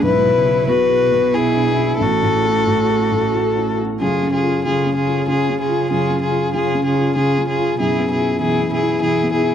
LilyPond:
<<
  \new Staff \with { instrumentName = "Violin" } { \time 3/4 \key cis \phrygian \tempo 4 = 95 b'4 b'4 gis'4 | a'2~ a'8 r8 | gis'8 gis'8 gis'8 gis'8 gis'8 gis'8 | gis'8 gis'8 gis'8 gis'8 gis'8 gis'8 |
gis'8 gis'8 gis'8 gis'8 gis'8 gis'8 | }
  \new Staff \with { instrumentName = "Viola" } { \time 3/4 \key cis \phrygian e'4 fis'4 e'8 e'8 | fis'2~ fis'8 r8 | eis'8 eis'8 eis'8 eis'8 eis'8 eis'8 | eis'8 eis'8 eis'8 eis'8 eis'8 eis'8 |
e'8 e'8 e'8 e'8 e'8 e'8 | }
  \new Staff \with { instrumentName = "Ambient pad" } { \time 3/4 \key cis \phrygian <b e' gis'>2. | <cis' fis' a'>2. | <cis' eis' gis'>2.~ | <cis' eis' gis'>2. |
<b e' gis'>2. | }
  \new Staff \with { instrumentName = "Felt piano" } { \time 3/4 \key cis \phrygian \tuplet 3/2 { b,,8 b,8 e'8 b,8 gis'8 b,8 e'8 d'8 e'8 } | \tuplet 3/2 { a,,8 a,8 fis'8 a,8 a'8 a,8 fis'8 e'8 fis'8 } | \tuplet 3/2 { fis,8 cis'8 eis'8 cis8 cis'8 eis'8 cis8 cis'8 eis'8 } | \tuplet 3/2 { fis,8 cis'8 eis'8 cis8 cis'8 eis'8 cis4 eis'8 } |
\tuplet 3/2 { fis,8 b8 e'8 e8 b8 e'8 e8 b8 e'8 } | }
  \new Staff \with { instrumentName = "Cello" } { \clef bass \time 3/4 \key cis \phrygian gis,8 cis8 b,2 | a,2~ a,8 r8 | cis8 cis8 cis8 cis8 cis8 cis8 | cis8 cis8 cis8 cis8 cis8 cis8 |
b,8 b,8 b,8 b,8 b,8 b,8 | }
>>